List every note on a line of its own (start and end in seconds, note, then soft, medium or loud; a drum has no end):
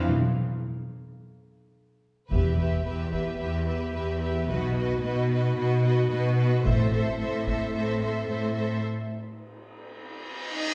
0.00 0.10 C4 medium
0.09 0.89 B2 medium
2.30 2.77 E1 soft
2.30 3.09 E2 soft
2.30 2.80 E2 soft
2.30 6.61 B3 soft
2.30 4.45 G4 soft
2.30 2.58 G4 soft
2.30 2.57 B4 soft
2.30 2.58 E5 soft
2.30 taiko soft
2.58 2.84 G4 soft
2.58 2.84 B4 soft
2.58 2.85 E5 soft
2.85 3.34 E2 soft
2.85 3.12 G4 soft
2.85 3.12 B4 soft
2.85 3.12 E5 soft
3.13 3.38 G4 soft
3.13 3.37 B4 soft
3.13 3.38 E5 soft
3.13 taiko soft
3.38 3.88 E2 soft
3.38 3.66 G4 soft
3.38 3.66 B4 soft
3.38 3.65 E5 soft
3.67 3.93 G4 soft
3.67 3.93 B4 soft
3.67 3.93 E5 soft
3.94 4.42 E2 soft
3.94 4.21 G4 soft
3.94 4.21 B4 soft
3.94 4.20 E5 soft
4.21 4.49 G4 soft
4.21 4.49 B4 soft
4.21 4.48 E5 soft
4.48 4.95 B1 soft
4.48 4.97 B2 soft
4.48 6.66 D#4 soft
4.48 4.76 F#4 soft
4.48 4.76 B4 soft
4.48 4.75 D#5 soft
4.76 5.03 F#4 soft
4.76 5.02 B4 soft
4.76 5.02 D#5 soft
5.03 5.51 B2 soft
5.03 5.31 F#4 soft
5.03 5.30 B4 soft
5.03 5.30 D#5 soft
5.31 5.57 F#4 soft
5.31 5.57 B4 soft
5.31 5.57 D#5 soft
5.57 6.05 B2 medium
5.57 5.84 F#4 soft
5.57 5.83 B4 soft
5.57 5.84 D#5 soft
5.85 6.10 F#4 soft
5.85 6.09 B4 soft
5.85 6.10 D#5 soft
6.11 6.60 B2 medium
6.11 6.38 F#4 soft
6.11 6.36 B4 soft
6.11 6.37 D#5 soft
6.37 6.65 F#4 soft
6.37 6.64 B4 soft
6.37 6.65 D#5 soft
6.64 7.11 A1 medium
6.64 7.13 A2 medium
6.64 8.79 C4 soft
6.64 8.79 E4 soft
6.64 6.91 A4 medium
6.64 6.91 C5 medium
6.64 6.92 E5 medium
6.64 taiko medium
6.92 7.19 A4 soft
6.92 7.19 C5 soft
6.92 7.19 E5 soft
7.19 7.67 A2 medium
7.19 7.46 A4 soft
7.19 7.47 C5 soft
7.19 7.46 E5 soft
7.47 7.73 A4 soft
7.47 7.73 C5 soft
7.47 7.73 E5 soft
7.47 taiko soft
7.73 8.21 A2 medium
7.73 8.01 A4 soft
7.73 8.00 C5 soft
7.73 8.01 E5 soft
8.01 8.27 A4 soft
8.01 8.27 C5 soft
8.01 8.28 E5 soft
8.28 8.77 A2 soft
8.28 8.55 A4 soft
8.28 8.54 C5 soft
8.28 8.54 E5 soft
8.55 8.83 A4 soft
8.55 8.83 C5 soft
8.55 8.82 E5 soft
8.83 reverse cymbal soft
10.49 10.74 D#4 medium
10.49 10.74 D#5 medium